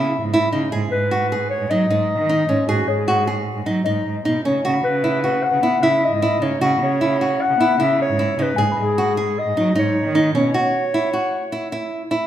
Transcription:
Already playing: cello C#3, nylon-string guitar E4, celesta F#5
0.22 cello G#2
0.34 nylon-string guitar E4
0.53 cello C#3, nylon-string guitar D#4
0.72 cello G#2, nylon-string guitar G#4
0.92 cello G#2, clarinet B4
1.11 nylon-string guitar F#4
1.32 nylon-string guitar G#4
1.50 clarinet C#5
1.60 cello G#2
1.70 cello F#3, nylon-string guitar D#4, clarinet D#5
1.89 cello G#2, nylon-string guitar D#4
2.18 cello D#3
2.29 nylon-string guitar D#4
2.48 cello G#2, nylon-string guitar C#4
2.67 cello G#2, clarinet F#4, nylon-string guitar G#4
2.87 cello G#2, clarinet G#4, celesta C#5
3.08 nylon-string guitar F#4
3.27 nylon-string guitar G#4
3.56 cello G#2
3.66 cello F#3, nylon-string guitar D#4
3.85 cello G#2, nylon-string guitar D#4, celesta D#5
4.06 cello G#2
4.25 cello B2, nylon-string guitar D#4
4.45 cello C#3, nylon-string guitar C#4
4.64 cello C#3, nylon-string guitar F#4
4.84 cello C#3, clarinet B4
5.04 nylon-string guitar E4
5.24 nylon-string guitar F#4, celesta B4
5.43 clarinet F#5
5.52 cello C#3
5.63 cello B3, nylon-string guitar E4
5.82 cello C#3, nylon-string guitar E4, clarinet E5
6.04 clarinet D#5
6.12 cello G#2
6.22 nylon-string guitar E4
6.41 cello C#3, nylon-string guitar D#4, clarinet C#5
6.61 cello C#3, nylon-string guitar F#4
6.80 cello C#3, clarinet C#5
7.01 nylon-string guitar E4
7.21 nylon-string guitar F#4
7.41 clarinet F#5
7.49 cello C#3
7.59 cello B3, nylon-string guitar E4
7.78 cello C#3, nylon-string guitar E4
7.82 clarinet E5
8.02 clarinet C#5
8.09 cello G#2
8.19 nylon-string guitar E4
8.37 cello C#3, nylon-string guitar D#4
8.42 clarinet B4
8.56 cello G#2, nylon-string guitar G#4, celesta G#5
8.72 celesta B5
8.78 cello G#2, clarinet G#4
8.98 nylon-string guitar F#4
9.17 nylon-string guitar G#4
9.39 clarinet D#5
9.46 cello G#2
9.57 cello F#3, nylon-string guitar D#4
9.75 cello G#2, nylon-string guitar D#4, clarinet C#5
10.06 cello D#3
10.15 nylon-string guitar D#4, celesta D#5
10.35 cello B2, nylon-string guitar C#4, clarinet C#5
10.54 nylon-string guitar F#4
10.94 nylon-string guitar E4
11.13 nylon-string guitar F#4
11.52 nylon-string guitar E4
11.72 nylon-string guitar E4
12.11 nylon-string guitar E4

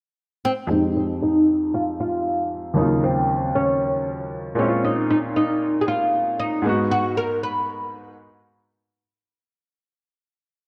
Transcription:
0.45 oud C4
0.67 grand piano F2 G#3 C4, oud D#4
0.72 grand piano D#4 G4
0.97 oud D#4
1.23 oud D#4
1.74 oud F4
2.00 oud F4
2.74 grand piano D#2 F#3 A#3, oud D#4
2.79 grand piano C#3 F4
3.04 oud C4
3.55 oud C#4
4.55 grand piano A#2 G#3 C4, oud C#4
4.60 grand piano C#4 E4
4.68 grand piano F4
4.85 oud D#4
5.10 oud D#4
5.36 oud D#4
5.81 oud G#4
5.88 oud F4
6.40 oud D#4
6.62 grand piano G#2 G#3 B3
6.67 grand piano D#4 F#4
6.91 oud F#4
7.17 oud A#4
7.43 oud B4

